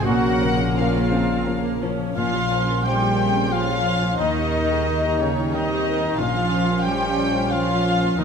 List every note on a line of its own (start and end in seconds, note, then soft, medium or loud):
0.04 1.96 A#1 medium
0.04 0.40 A#2 medium
0.04 1.96 A#2 medium
0.04 2.15 A#2 medium
0.04 1.80 C#3 medium
0.04 0.75 A#3 medium
0.04 1.81 A#3 medium
0.04 0.75 C#4 medium
0.04 0.50 F#4 loud
0.04 0.75 F#4 medium
0.04 0.51 F#4 loud
0.04 0.75 A#4 medium
0.04 0.77 F#5 loud
0.24 1.64 A#3 medium
0.41 0.73 C#3 soft
0.41 4.22 C#3 medium
0.41 0.73 C#4 medium
0.41 0.74 A#4 medium
0.59 4.22 F5 medium
0.76 1.09 F3 medium
0.76 1.09 C#4 medium
0.76 1.77 F4 medium
0.76 1.81 F4 medium
0.76 1.78 F4 medium
0.76 1.80 A#4 medium
0.76 3.00 A#4 medium
0.76 1.09 A#4 medium
0.76 1.82 F5 medium
1.12 1.43 F3 medium
1.12 1.47 C4 medium
1.12 1.43 C#4 soft
1.12 1.44 A#4 medium
1.12 4.22 A#5 medium
1.47 1.78 F3 medium
1.47 1.82 A#3 medium
1.47 1.78 C#4 soft
1.47 4.22 F4 medium
1.47 1.78 A#4 medium
1.65 1.99 A#3 medium
1.82 2.13 F3 medium
1.82 2.33 F3 medium
1.82 2.13 C#4 medium
1.82 2.17 C#4 medium
1.82 2.14 A#4 medium
2.00 2.49 A#3 medium
2.16 4.15 A#1 medium
2.16 4.22 A#2 medium
2.16 4.15 A#2 medium
2.16 4.16 C#3 medium
2.16 2.80 F3 medium
2.16 4.15 A#3 medium
2.16 3.47 C#4 medium
2.16 2.48 C#4 medium
2.16 2.80 F4 medium
2.16 2.86 F5 medium
2.16 2.80 F5 loud
2.16 3.48 C6 medium
2.33 4.22 F3 medium
2.33 2.60 F4 medium
2.50 4.35 A#3 medium
2.50 2.83 C#4 medium
2.50 2.78 C5 medium
2.68 2.84 A#4 soft
2.84 3.52 G3 medium
2.84 3.18 C4 medium
2.84 3.52 G4 medium
2.84 3.84 C5 medium
2.84 3.11 C5 medium
2.84 3.54 G5 medium
2.84 3.52 G5 medium
3.01 3.28 F4 medium
3.01 3.67 A#4 medium
3.18 3.51 C4 medium
3.18 3.45 C5 medium
3.35 3.62 C#4 soft
3.35 4.22 C6 medium
3.51 4.19 F3 medium
3.51 4.20 C#4 medium
3.51 4.19 F4 medium
3.51 3.78 C5 medium
3.51 4.22 C#5 medium
3.51 4.19 F5 loud
3.51 4.18 F5 medium
3.51 4.18 C6 medium
3.68 3.95 F4 medium
3.68 4.87 A#4 medium
3.85 4.12 C5 medium
3.85 4.22 C5 medium
4.02 4.22 C#4 soft
4.02 4.19 C#4 medium
4.18 6.15 D#2 medium
4.18 6.21 D#3 medium
4.18 5.19 D#3 medium
4.18 6.14 G3 medium
4.18 5.18 D#4 medium
4.18 6.14 D#4 medium
4.18 5.52 D#4 medium
4.18 4.86 D#4 medium
4.18 5.19 D#5 medium
4.18 5.22 D#5 medium
4.18 5.52 A#5 medium
4.36 6.51 A#3 soft
4.36 4.64 G4 medium
4.54 6.21 D#4 medium
4.54 4.81 A#4 medium
4.71 6.02 G4 soft
4.71 4.88 G#4 soft
4.88 5.52 D#4 medium
4.88 5.14 A#4 medium
4.88 5.85 A#4 soft
5.05 5.31 G4 soft
5.05 5.69 D#5 medium
5.20 5.53 C#3 medium
5.20 5.53 C#4 medium
5.20 5.47 A#4 medium
5.20 5.53 C#5 medium
5.20 5.52 G5 medium
5.38 5.64 D#4 medium
5.38 8.24 A#5 medium
5.52 6.19 D#3 medium
5.52 6.19 C4 medium
5.52 6.20 D#4 medium
5.52 6.19 D#4 medium
5.52 5.80 A#4 soft
5.52 6.18 D#5 medium
5.52 6.21 D#5 medium
5.52 6.21 G5 medium
5.52 6.17 A#5 medium
5.70 5.96 G4 medium
5.70 6.21 D#5 medium
5.86 7.01 A#4 medium
5.86 6.13 A#4 medium
6.03 6.19 D#4 medium
6.03 6.22 G4 medium
6.18 8.13 A#1 medium
6.18 8.14 A#1 medium
6.18 8.20 A#2 medium
6.18 8.01 F3 medium
6.18 6.85 F3 medium
6.18 7.50 C#4 medium
6.18 8.01 C#4 medium
6.18 6.85 F4 medium
6.18 6.83 F5 loud
6.18 6.87 F5 medium
6.18 7.51 C6 medium
6.36 8.21 F3 soft
6.36 6.62 F4 medium
6.53 8.24 A#3 medium
6.53 6.79 C5 medium
6.69 8.01 C#4 soft
6.69 6.86 A#4 soft
6.84 7.52 G3 medium
6.84 7.84 F4 medium
6.84 7.51 G4 medium
6.84 7.12 C5 medium
6.84 7.50 G5 medium
6.84 7.54 G5 medium
7.02 7.28 F4 medium
7.02 7.67 A#4 medium
7.18 7.45 C5 medium
7.18 7.50 C#5 medium
7.35 7.61 C#4 soft
7.35 8.20 F5 medium
7.50 8.18 F3 medium
7.50 8.16 C#4 medium
7.50 8.17 F4 medium
7.50 7.78 C5 medium
7.50 8.20 C#5 medium
7.50 8.18 F5 loud
7.50 8.21 F5 medium
7.50 8.17 C6 medium
7.68 7.95 F4 medium
7.68 8.24 A#4 medium
7.85 8.20 F4 medium
7.85 8.11 C5 medium
8.02 8.18 C#4 medium
8.02 8.21 C#4 medium
8.18 8.24 D#2 medium
8.18 8.24 D#3 medium
8.18 8.24 G3 medium
8.18 8.24 D#4 medium
8.18 8.24 D#5 loud
8.18 8.24 D#5 medium
8.18 8.24 A#5 medium